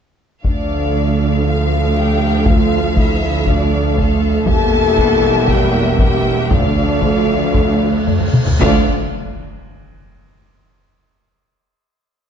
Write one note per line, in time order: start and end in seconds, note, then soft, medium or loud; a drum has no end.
0.43 4.45 D2 soft
0.43 4.44 F3 soft
0.43 4.45 A3 soft
0.43 1.41 D4 medium
0.43 4.45 A4 soft
0.43 1.42 D5 medium
0.43 4.44 F5 soft
0.43 taiko medium
1.46 1.96 F4 medium
1.46 1.98 F5 medium
1.96 2.47 G4 medium
1.96 2.48 G5 medium
2.46 2.96 F4 medium
2.46 2.98 F5 medium
2.46 taiko medium
2.96 3.47 E4 medium
2.96 3.47 E5 medium
2.96 taiko medium
3.46 3.98 D4 medium
3.46 3.98 D5 medium
3.46 taiko medium
3.97 4.48 A3 medium
3.97 4.48 A4 medium
3.97 taiko medium
4.46 6.53 E1 medium
4.46 6.52 E2 medium
4.46 6.48 G3 medium
4.46 6.48 A#3 medium
4.46 6.49 A#3 medium
4.46 6.49 G4 medium
4.46 5.49 A4 loud
4.46 6.48 E5 medium
4.46 5.48 A5 medium
4.46 taiko medium
4.97 taiko medium
5.48 6.00 G4 medium
5.48 5.98 G5 medium
5.48 taiko medium
5.99 6.51 G4 medium
5.99 6.51 G5 medium
5.99 taiko medium
6.51 8.39 D2 medium
6.51 8.40 D2 medium
6.51 8.30 F3 medium
6.51 8.35 A3 medium
6.51 8.30 A3 medium
6.51 8.30 D4 medium
6.51 8.39 A4 medium
6.51 8.34 D5 medium
6.51 8.40 F5 soft
6.51 taiko loud
6.51 cymbal swell medium
7.02 taiko medium
7.54 taiko medium
8.07 taiko low-mid medium
8.20 taiko low-mid medium
8.34 taiko mid medium
8.47 taiko low medium
8.60 8.90 D2 medium
8.60 8.91 D2 medium
8.60 8.84 F3 medium
8.60 8.84 A3 medium
8.60 8.83 D4 medium
8.60 8.91 F4 medium
8.60 8.91 A4 medium
8.60 8.90 D5 medium
8.60 8.90 F5 medium
8.60 taiko loud
8.60 impact medium